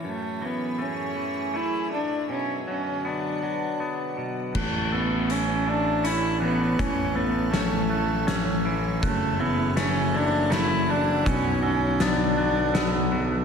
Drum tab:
CC |------|------|x-----|------|
HH |------|------|--x-x-|x-x-x-|
SD |------|------|------|--o-o-|
BD |------|------|o-----|o-----|

CC |------|------|
HH |x-x-x-|x-x-x-|
SD |--o-o-|--o-o-|
BD |o-----|o-----|